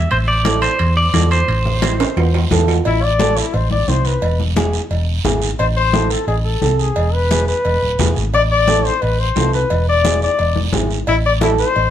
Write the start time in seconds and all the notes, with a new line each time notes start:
0.11 A1 C5, high conga, high timbale, long guiro
0.28 D5
0.45 C4 E4 A4, high conga, high timbale, short guiro
0.62 C5, high timbale, short guiro
0.79 E2, high conga, high timbale, long guiro
0.97 D5
1.13 E2 C4 E4 A4, high conga, high timbale, low timbale, short guiro
1.31 C5, high timbale, short guiro
1.48 A1, high conga, high timbale, long guiro
1.65 low conga
1.82 C4 E4 C5, high conga, high timbale, short guiro
2.00 high timbale, short guiro
2.17 E2, high conga, low timbale, long guiro
2.34 low timbale
2.51 E2 C4 E4 A4, high conga, low conga, low timbale, short guiro
2.68 low timbale, short guiro
2.85 A1 E4, cowbell, high conga, long guiro
3.03 D5
3.19 C4 E4 A4, high conga, short guiro
3.37 E4, short guiro
3.53 A1 C5, cowbell, high conga, long guiro
3.71 D5, high conga
3.88 C2 C4 E4 C5, high conga, short guiro
4.05 B4, short guiro
4.22 E1, cowbell, high conga, long guiro
4.40 high conga
4.56 B3 E4 G#4, high conga, short guiro
4.73 short guiro
4.90 E1, cowbell, high conga, long guiro
5.24 G#1 B3 E4 G#4, high conga, low conga, short guiro
5.42 short guiro
5.59 A1 C5, cowbell, high conga, long guiro
5.77 C5
5.93 C4 E4 A4, high conga, short guiro
6.10 A4, short guiro
6.27 A1 G#4, cowbell, high conga, long guiro
6.44 A4
6.61 C2 C4 E4 A4, high conga, short guiro
6.79 G#4, short guiro
6.96 E1, cowbell, high conga, long guiro
7.13 B4
7.30 B3 E4 G#4, high conga, short guiro
7.48 B4, short guiro
7.65 E1, cowbell, high conga, long guiro
7.82 D1
7.99 E1 B3 E4 G#4, high conga, low conga, low timbale, short guiro
8.16 G#1, short guiro
8.33 A1 D5, cowbell, high conga, long guiro
8.52 D5
8.67 C4 E4 A4, high conga, short guiro
8.85 C5, short guiro
9.02 A1 B4, cowbell, high conga, long guiro
9.20 C5
9.36 C2 C4 E4 A4, high conga, low timbale, short guiro
9.53 B4, short guiro
9.70 E1, cowbell, high conga, long guiro
9.89 D5
10.05 B3 E4 G#4, high conga, short guiro
10.22 D5, short guiro
10.39 E1, cowbell, high conga, long guiro
10.56 high conga
10.73 G#1 B3 E4 G#4, high conga, low conga, short guiro
10.90 short guiro
11.07 A1 E4, cowbell, high conga, long guiro
11.26 D5
11.40 C4 E4 A4, high conga, short guiro
11.58 C5, short guiro
11.76 A1, cowbell, high conga, long guiro